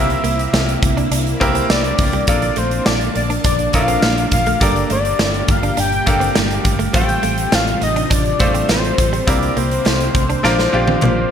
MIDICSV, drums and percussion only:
0, 0, Header, 1, 2, 480
1, 0, Start_track
1, 0, Key_signature, -2, "major"
1, 0, Tempo, 582524
1, 1881, Time_signature, 4, 2, 24, 8
1, 9320, End_track
2, 0, Start_track
2, 0, Title_t, "Drums"
2, 82, Note_on_c, 9, 42, 55
2, 165, Note_off_c, 9, 42, 0
2, 200, Note_on_c, 9, 42, 76
2, 282, Note_off_c, 9, 42, 0
2, 323, Note_on_c, 9, 42, 56
2, 406, Note_off_c, 9, 42, 0
2, 442, Note_on_c, 9, 38, 110
2, 443, Note_on_c, 9, 54, 65
2, 525, Note_off_c, 9, 38, 0
2, 526, Note_off_c, 9, 54, 0
2, 566, Note_on_c, 9, 42, 49
2, 648, Note_off_c, 9, 42, 0
2, 680, Note_on_c, 9, 36, 100
2, 681, Note_on_c, 9, 42, 73
2, 763, Note_off_c, 9, 36, 0
2, 763, Note_off_c, 9, 42, 0
2, 803, Note_on_c, 9, 42, 56
2, 886, Note_off_c, 9, 42, 0
2, 920, Note_on_c, 9, 42, 98
2, 1002, Note_off_c, 9, 42, 0
2, 1043, Note_on_c, 9, 42, 43
2, 1126, Note_off_c, 9, 42, 0
2, 1161, Note_on_c, 9, 42, 77
2, 1163, Note_on_c, 9, 36, 89
2, 1243, Note_off_c, 9, 42, 0
2, 1246, Note_off_c, 9, 36, 0
2, 1277, Note_on_c, 9, 42, 60
2, 1359, Note_off_c, 9, 42, 0
2, 1400, Note_on_c, 9, 38, 117
2, 1400, Note_on_c, 9, 54, 72
2, 1482, Note_off_c, 9, 54, 0
2, 1483, Note_off_c, 9, 38, 0
2, 1517, Note_on_c, 9, 42, 54
2, 1599, Note_off_c, 9, 42, 0
2, 1633, Note_on_c, 9, 46, 85
2, 1638, Note_on_c, 9, 36, 98
2, 1716, Note_off_c, 9, 46, 0
2, 1720, Note_off_c, 9, 36, 0
2, 1756, Note_on_c, 9, 42, 57
2, 1838, Note_off_c, 9, 42, 0
2, 1872, Note_on_c, 9, 42, 94
2, 1877, Note_on_c, 9, 36, 114
2, 1954, Note_off_c, 9, 42, 0
2, 1960, Note_off_c, 9, 36, 0
2, 1994, Note_on_c, 9, 42, 59
2, 2076, Note_off_c, 9, 42, 0
2, 2109, Note_on_c, 9, 42, 76
2, 2192, Note_off_c, 9, 42, 0
2, 2235, Note_on_c, 9, 42, 57
2, 2318, Note_off_c, 9, 42, 0
2, 2355, Note_on_c, 9, 38, 113
2, 2356, Note_on_c, 9, 54, 65
2, 2364, Note_on_c, 9, 39, 88
2, 2438, Note_off_c, 9, 38, 0
2, 2439, Note_off_c, 9, 54, 0
2, 2447, Note_off_c, 9, 39, 0
2, 2480, Note_on_c, 9, 42, 49
2, 2562, Note_off_c, 9, 42, 0
2, 2599, Note_on_c, 9, 42, 71
2, 2682, Note_off_c, 9, 42, 0
2, 2720, Note_on_c, 9, 42, 56
2, 2803, Note_off_c, 9, 42, 0
2, 2836, Note_on_c, 9, 42, 92
2, 2840, Note_on_c, 9, 36, 107
2, 2918, Note_off_c, 9, 42, 0
2, 2922, Note_off_c, 9, 36, 0
2, 2957, Note_on_c, 9, 42, 45
2, 3039, Note_off_c, 9, 42, 0
2, 3074, Note_on_c, 9, 42, 81
2, 3081, Note_on_c, 9, 36, 89
2, 3156, Note_off_c, 9, 42, 0
2, 3164, Note_off_c, 9, 36, 0
2, 3197, Note_on_c, 9, 42, 61
2, 3280, Note_off_c, 9, 42, 0
2, 3316, Note_on_c, 9, 54, 73
2, 3317, Note_on_c, 9, 38, 119
2, 3323, Note_on_c, 9, 39, 83
2, 3398, Note_off_c, 9, 54, 0
2, 3399, Note_off_c, 9, 38, 0
2, 3406, Note_off_c, 9, 39, 0
2, 3441, Note_on_c, 9, 42, 53
2, 3523, Note_off_c, 9, 42, 0
2, 3555, Note_on_c, 9, 42, 84
2, 3559, Note_on_c, 9, 36, 105
2, 3637, Note_off_c, 9, 42, 0
2, 3641, Note_off_c, 9, 36, 0
2, 3677, Note_on_c, 9, 42, 61
2, 3760, Note_off_c, 9, 42, 0
2, 3799, Note_on_c, 9, 42, 93
2, 3800, Note_on_c, 9, 36, 109
2, 3882, Note_off_c, 9, 36, 0
2, 3882, Note_off_c, 9, 42, 0
2, 3922, Note_on_c, 9, 42, 56
2, 4005, Note_off_c, 9, 42, 0
2, 4037, Note_on_c, 9, 42, 75
2, 4119, Note_off_c, 9, 42, 0
2, 4160, Note_on_c, 9, 42, 57
2, 4243, Note_off_c, 9, 42, 0
2, 4279, Note_on_c, 9, 38, 115
2, 4280, Note_on_c, 9, 54, 68
2, 4287, Note_on_c, 9, 39, 80
2, 4362, Note_off_c, 9, 38, 0
2, 4363, Note_off_c, 9, 54, 0
2, 4369, Note_off_c, 9, 39, 0
2, 4401, Note_on_c, 9, 42, 47
2, 4483, Note_off_c, 9, 42, 0
2, 4516, Note_on_c, 9, 42, 75
2, 4520, Note_on_c, 9, 36, 108
2, 4598, Note_off_c, 9, 42, 0
2, 4602, Note_off_c, 9, 36, 0
2, 4639, Note_on_c, 9, 42, 58
2, 4722, Note_off_c, 9, 42, 0
2, 4754, Note_on_c, 9, 42, 95
2, 4837, Note_off_c, 9, 42, 0
2, 4879, Note_on_c, 9, 42, 43
2, 4962, Note_off_c, 9, 42, 0
2, 4997, Note_on_c, 9, 42, 74
2, 5002, Note_on_c, 9, 36, 93
2, 5079, Note_off_c, 9, 42, 0
2, 5085, Note_off_c, 9, 36, 0
2, 5118, Note_on_c, 9, 42, 62
2, 5201, Note_off_c, 9, 42, 0
2, 5236, Note_on_c, 9, 54, 68
2, 5237, Note_on_c, 9, 38, 117
2, 5246, Note_on_c, 9, 39, 88
2, 5318, Note_off_c, 9, 54, 0
2, 5319, Note_off_c, 9, 38, 0
2, 5329, Note_off_c, 9, 39, 0
2, 5361, Note_on_c, 9, 42, 51
2, 5443, Note_off_c, 9, 42, 0
2, 5477, Note_on_c, 9, 42, 89
2, 5480, Note_on_c, 9, 36, 99
2, 5559, Note_off_c, 9, 42, 0
2, 5562, Note_off_c, 9, 36, 0
2, 5599, Note_on_c, 9, 42, 61
2, 5682, Note_off_c, 9, 42, 0
2, 5717, Note_on_c, 9, 42, 94
2, 5720, Note_on_c, 9, 36, 115
2, 5799, Note_off_c, 9, 42, 0
2, 5803, Note_off_c, 9, 36, 0
2, 5840, Note_on_c, 9, 42, 54
2, 5923, Note_off_c, 9, 42, 0
2, 5957, Note_on_c, 9, 42, 83
2, 6039, Note_off_c, 9, 42, 0
2, 6078, Note_on_c, 9, 42, 56
2, 6160, Note_off_c, 9, 42, 0
2, 6199, Note_on_c, 9, 38, 115
2, 6200, Note_on_c, 9, 54, 65
2, 6206, Note_on_c, 9, 39, 81
2, 6282, Note_off_c, 9, 38, 0
2, 6282, Note_off_c, 9, 54, 0
2, 6288, Note_off_c, 9, 39, 0
2, 6323, Note_on_c, 9, 42, 46
2, 6405, Note_off_c, 9, 42, 0
2, 6440, Note_on_c, 9, 42, 73
2, 6522, Note_off_c, 9, 42, 0
2, 6562, Note_on_c, 9, 42, 57
2, 6644, Note_off_c, 9, 42, 0
2, 6679, Note_on_c, 9, 42, 97
2, 6682, Note_on_c, 9, 36, 111
2, 6761, Note_off_c, 9, 42, 0
2, 6764, Note_off_c, 9, 36, 0
2, 6801, Note_on_c, 9, 42, 47
2, 6884, Note_off_c, 9, 42, 0
2, 6918, Note_on_c, 9, 42, 79
2, 6923, Note_on_c, 9, 36, 92
2, 7000, Note_off_c, 9, 42, 0
2, 7006, Note_off_c, 9, 36, 0
2, 7042, Note_on_c, 9, 42, 59
2, 7124, Note_off_c, 9, 42, 0
2, 7163, Note_on_c, 9, 38, 125
2, 7163, Note_on_c, 9, 54, 72
2, 7166, Note_on_c, 9, 39, 85
2, 7245, Note_off_c, 9, 54, 0
2, 7246, Note_off_c, 9, 38, 0
2, 7249, Note_off_c, 9, 39, 0
2, 7288, Note_on_c, 9, 42, 53
2, 7370, Note_off_c, 9, 42, 0
2, 7403, Note_on_c, 9, 36, 102
2, 7406, Note_on_c, 9, 42, 85
2, 7485, Note_off_c, 9, 36, 0
2, 7488, Note_off_c, 9, 42, 0
2, 7526, Note_on_c, 9, 42, 61
2, 7608, Note_off_c, 9, 42, 0
2, 7643, Note_on_c, 9, 36, 117
2, 7644, Note_on_c, 9, 42, 94
2, 7725, Note_off_c, 9, 36, 0
2, 7726, Note_off_c, 9, 42, 0
2, 7766, Note_on_c, 9, 42, 57
2, 7849, Note_off_c, 9, 42, 0
2, 7883, Note_on_c, 9, 42, 74
2, 7966, Note_off_c, 9, 42, 0
2, 8004, Note_on_c, 9, 42, 58
2, 8086, Note_off_c, 9, 42, 0
2, 8123, Note_on_c, 9, 39, 85
2, 8126, Note_on_c, 9, 38, 111
2, 8127, Note_on_c, 9, 54, 68
2, 8205, Note_off_c, 9, 39, 0
2, 8208, Note_off_c, 9, 38, 0
2, 8209, Note_off_c, 9, 54, 0
2, 8243, Note_on_c, 9, 42, 50
2, 8326, Note_off_c, 9, 42, 0
2, 8362, Note_on_c, 9, 36, 102
2, 8362, Note_on_c, 9, 42, 75
2, 8444, Note_off_c, 9, 36, 0
2, 8444, Note_off_c, 9, 42, 0
2, 8485, Note_on_c, 9, 42, 58
2, 8568, Note_off_c, 9, 42, 0
2, 8602, Note_on_c, 9, 38, 64
2, 8684, Note_off_c, 9, 38, 0
2, 8723, Note_on_c, 9, 38, 60
2, 8806, Note_off_c, 9, 38, 0
2, 8961, Note_on_c, 9, 48, 74
2, 9044, Note_off_c, 9, 48, 0
2, 9082, Note_on_c, 9, 47, 94
2, 9083, Note_on_c, 9, 39, 87
2, 9164, Note_off_c, 9, 47, 0
2, 9165, Note_off_c, 9, 39, 0
2, 9320, End_track
0, 0, End_of_file